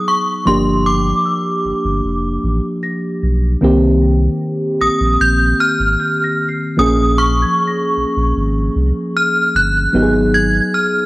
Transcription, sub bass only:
0.46 G1
1.65 G1
1.85 G1
2.04 F1
2.43 A1
3.23 B1
3.62 C2
4.81 A#1
5.00 A#1
5.20 A#1
5.79 G#1
6.78 A#1
7.97 A#1
8.17 A#1
8.37 G#1
8.76 C2
9.55 G1
9.94 G#1

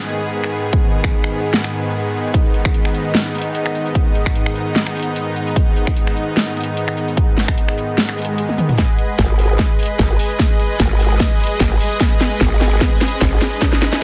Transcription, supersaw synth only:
Already playing: G#2 D#3 B3 G#4
2.34 D#4
8.78 G#3 G#4 B4 D#5

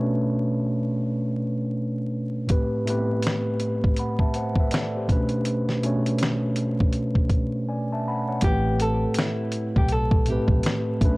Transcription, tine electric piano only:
Already playing: B2 A3 C#4 D4 B4 C#5
2.47 A2 A3 C4 G4
2.52 B4
2.85 A2 A3 B3 G4
2.90 B4
2.94 C4
3.99 F#5 B5
4.20 E5 A5
4.35 C5 F#5
4.60 B4 E5
4.72 A4 D5
4.96 G4 C5
5.07 B2 A3 C#4 D4
5.12 B4
5.82 B2 A3 C#4 D4
5.86 C#5
7.69 D5 G#5
7.93 E5 A5
8.08 F#5 B5
8.29 C#5 F#5
8.42 A2 A3 B3 G4
8.47 B4
8.51 C4
10.27 A2 A3 C4 G4
10.32 B4
11.01 B2 A3 C#4 D4
11.05 B4

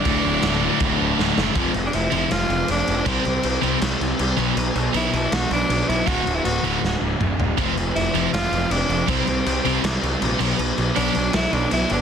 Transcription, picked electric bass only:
0.05 D1
0.24 D1
0.43 D1
0.81 D1
1.00 D1
1.19 D1
1.37 F#1
1.56 F1
1.75 F1
1.94 F1
2.12 F1
2.31 F1
2.49 F1
2.69 F1
2.88 F1
3.06 C2
3.26 C2
3.44 C2
3.63 C2
3.82 C2
4.00 C2
4.20 C2
4.38 B1
4.56 B1
4.75 B1
4.94 B1
5.13 B1
5.32 B1
5.51 B1
5.69 B1
5.89 B1
6.08 D1
6.26 D1
6.45 D1
6.64 D1
6.82 D1
7.01 D1
7.20 D1
7.39 D1
7.59 F1
7.76 F1
7.95 F1
8.14 F1
8.33 F1
8.52 F1
8.70 F1
8.89 F1
9.09 C2
9.28 C2
9.46 C2
9.66 C2
9.84 C2
10.03 C2
10.22 A#1
10.40 B1
10.59 B1
10.78 B1
10.97 B1
11.16 B1
11.33 B1
11.53 B1
11.72 B1
11.91 G1

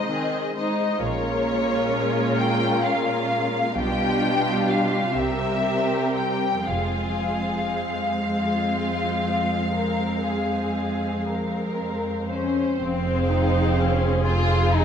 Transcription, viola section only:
0.11 D#3 C4
0.57 G#3 D#4
1.02 G#3 C#4
3.76 G3 D4
5.17 G3 C4
6.65 G#3 C4
12.81 C4 G#4
13.29 D#4
13.77 C#4
14.25 C4

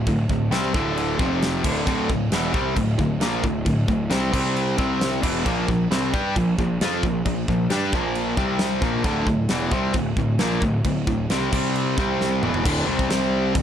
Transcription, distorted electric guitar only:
0.07 D2 A2
0.31 D2 A2
0.51 C3 G3 C4
0.74 D2 A2 D3
1.19 F2 C3 F3
1.64 D2 A2 D3
1.86 D2 A2 D3
2.10 D2 A2
2.32 E2 B2 E3
2.54 C3 G3 C4
2.77 D2 A2
2.99 D2 A2
3.21 A#2 F3 A#3
3.44 D2 A2
3.65 D2 A2
3.88 D2 A2
4.10 C3 G3 C4
4.32 C3 G3 C4
4.77 C3 G3 C4
5.21 E2 B2 E3
5.46 A#2 F3 A#3
5.68 A#2 F3
5.91 C3 G3 C4
6.14 G3 D4 G4
6.36 A#2 F3
6.59 A#2 F3
6.82 F3 C4 F4
7.04 A#2 F3
7.26 A#2 F3
7.49 A#2 F3
7.70 G3 D4 G4
7.93 A#2 F3 A#3
8.37 C3 G3 C4
8.82 A#2 F3 A#3
9.04 D2 A2 D3
9.26 D2 A2
9.50 E2 B2 E3
9.72 C3 G3 C4
9.94 D2 A2
10.18 D2 A2
10.40 A#2 F3 A#3
10.61 D2 A2
10.85 D2 A2
11.07 D2 A2
11.31 C3 G3 C4
11.52 C3 G3 C4
11.98 C3 G3 C4
12.43 E2 B2 E3
12.64 D2 A2 D3
12.87 C3 G3 C4
13.09 C3 G3 C4
13.54 D2 A2

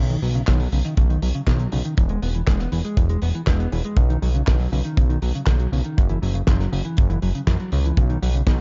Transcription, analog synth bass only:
Already playing: B1
0.22 B1
0.48 B1
0.72 B1
0.97 B1
1.22 B1
1.47 B1
1.72 B1
1.98 E1
2.22 E1
2.47 E1
2.72 E1
2.97 E1
3.22 E1
3.47 E1
3.72 E1
3.97 B1
4.22 B1
4.48 B1
4.72 B1
4.97 B1
5.22 B1
5.47 B1
5.72 B1
5.98 F#1
6.22 F#1
6.48 F#1
6.72 F#1
6.98 F#1
7.22 F#1
7.47 F#2
7.72 C#2
7.97 B1
8.22 B1
8.47 B1

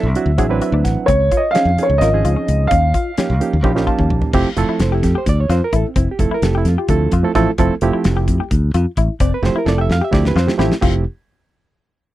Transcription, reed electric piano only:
0.16 F#3 C4 D4 E4 F#4
0.38 F#3 C4 D4 E4 G#4
0.49 F#3 C4 D4 E4 B4
0.62 E5
0.84 F#5
1.54 F3 C4 C#4 D#4 G#4
1.78 F3 C4 C#4 D#4 G#4
2.01 F3 C4 C#4 D#4 A#4
2.13 F3 C4 C#4 D#4 G#4
3.18 F3 A#3 C#4 D#4 G4
3.40 F3 A#3 C#4 D#4 G4
3.63 F3 A#3 C#4 D#4 G4
3.75 F3 A#3 C#4 D#4 G4
3.87 A5
4.33 F3 A3 C4 E4 G4
4.57 F3 A3 C4 E4 A4
4.82 C5
4.94 E4
5.04 G4
5.18 C5
5.29 D5
5.40 C#5
5.51 C5
5.64 A#4
5.76 A4
5.88 C4
5.97 E4
6.11 G4
6.19 F3 A3 C4 E4 A4
6.34 A#4
6.43 F3 A3 C4 E4 G4 A4
6.57 E4
6.68 F4
6.89 F3 A3 C4 E4 A4
7.23 F3 A3 C4 E4 A4
7.35 F3 A3 C4 E4 A4
7.59 F3 A3 C4 E4 A4
7.82 F3 A3 C4 E4 G4
9.21 D5
9.34 B4
9.42 F3 A3 C4 E4 G4 C5
9.58 A#4
9.65 F3 A3 C4 E4 A4 D5
9.81 E5
9.92 F5
10.04 E5
10.11 F3 A3 C4 E4 G4 D5
10.28 B4
10.39 C5
10.47 F3 A3 C4 E4 G4
10.58 F3 A3 C4 E4 G4
10.81 F3 A3 C4 E4 G4

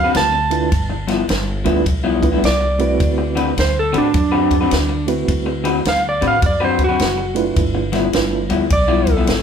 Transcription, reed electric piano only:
0.50 A3 D4 E4 F4 B4
1.65 A3 D4 E4 F4 B4
2.22 A3 D4 E4 F4 B4
2.79 A3 C4 E4 F#4 B4
5.07 A3 C4 E4 F#4 B4
7.34 A3 D4 E4 F4 B4
8.13 A3 D4 E4 F4 B4

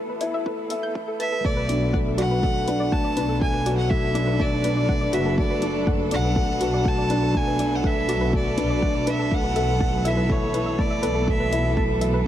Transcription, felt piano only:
Already playing: A3 E4 A4
0.21 E4
0.46 A3
0.70 E5
0.94 A3
1.19 B4
1.44 A3
1.69 D4
1.93 A3
2.18 F#4
2.43 A3
2.68 D4
2.93 A3
3.17 D4
3.42 A3
3.66 F#4
3.91 A3
4.14 D4
4.39 A3
4.64 D4
4.89 A3
5.13 F#4
5.38 A3
5.62 D4
5.87 A3
6.12 D4
6.36 A3
6.61 F#4
6.85 A3
7.10 D4
7.34 A3
7.59 D4
7.83 A3
8.08 F#4
8.33 A3
8.57 D4
8.83 A3
9.07 D4
9.31 A3
9.56 A4
9.80 A3
10.05 E4
10.29 A3
10.54 E4
10.79 A3
11.03 A4
11.27 A3
11.52 E4
11.77 A3
12.01 E4

